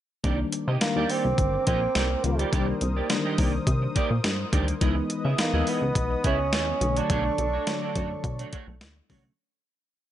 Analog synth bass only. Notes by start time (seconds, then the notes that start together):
0.24 C2
0.68 C3
0.96 D#2
1.25 C2
1.38 G1
1.67 A#1
1.96 C2
2.24 C#2
2.53 C2
2.81 C2
3.38 C2
3.67 C3
4.11 A#2
4.24 G2
4.53 D2
4.81 C#2
5.25 C#3
5.53 D#2
5.82 C#2
5.95 B1
6.25 C#2
6.53 D#2
6.81 B1
7.10 B1
7.38 B1
7.96 F#2
8.24 B2
8.67 B1
8.81 D2
9.10 C2